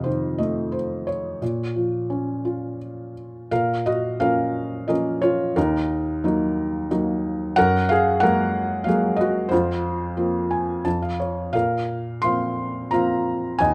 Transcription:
Already playing: F2 C3 D#5 F5
0.04 D#3 C5
0.38 A3 D#5
0.72 C5
1.07 C#5
1.42 A#2
1.76 F3
2.10 C#4
2.45 F4
3.51 A#2 A#4 F5
3.86 F#4 D#5
4.20 F3 A#3 C#4 A#4 F5
4.88 F3 A#3 C#4 A#4 D#5
5.22 F4 C#5
5.56 D#2 D#4 A#4
6.24 F#3 A#3 D#4
6.91 F#3 A#3 D#4
7.56 F#2 A#4 F#5
7.89 G#4 F5
8.20 F#3 G#3 A#3 A#4 F#5
8.84 F#3 G#3 A#3 F5
8.88 G#4
9.16 D#5
9.21 F#4
9.49 F2 C5
9.53 F4
10.17 F3 A#3 C4
10.51 G#5
10.85 F2 A5
11.02 F5
11.20 C#5
11.53 A#2 A#4 F5
12.22 F3 A#3 C4 F5 C6
12.91 F3 A#3 C4 F5 A#5
13.59 D#2 D#5 G#5

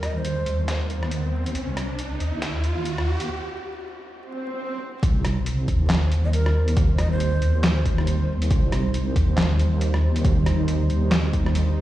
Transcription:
Already playing: D#2 G3 D#4 C5, riser
0.03 D#5, cross-stick, closed hi-hat
0.16 C5
0.25 closed hi-hat
0.46 D#2, closed hi-hat
0.68 snare, closed hi-hat
0.90 closed hi-hat
1.03 cross-stick
1.11 closed hi-hat
1.46 closed hi-hat
1.55 C2, closed hi-hat
1.77 cross-stick, closed hi-hat
1.99 closed hi-hat
2.20 D#2, closed hi-hat
2.42 snare, closed hi-hat
2.64 closed hi-hat
2.85 closed hi-hat
2.98 cross-stick
3.20 closed hi-hat
4.16 swell
5.03 C2 G3 D#4 C5, kick, closed hi-hat
5.25 cross-stick, closed hi-hat
5.46 closed hi-hat
5.68 D#2, kick, closed hi-hat
5.90 snare, clap, closed hi-hat
6.12 closed hi-hat
6.24 D#5
6.33 A#4, closed hi-hat
6.46 cross-stick
6.68 closed hi-hat
6.77 kick, closed hi-hat
6.98 D#5, cross-stick, closed hi-hat
7.11 C5
7.20 closed hi-hat
7.42 D#2, closed hi-hat
7.64 snare, clap, closed hi-hat
7.85 kick, closed hi-hat
7.98 cross-stick
8.07 closed hi-hat
8.42 closed hi-hat
8.51 C2, kick, closed hi-hat
8.72 cross-stick, closed hi-hat
8.94 closed hi-hat
9.16 D#2, kick, closed hi-hat
9.38 snare, clap, closed hi-hat
9.59 closed hi-hat
9.81 closed hi-hat
9.94 cross-stick
10.16 closed hi-hat
10.25 kick, closed hi-hat
10.46 cross-stick, closed hi-hat
10.68 closed hi-hat
10.90 D#2, closed hi-hat
11.12 snare, clap, closed hi-hat
11.33 kick, closed hi-hat
11.46 cross-stick
11.55 closed hi-hat

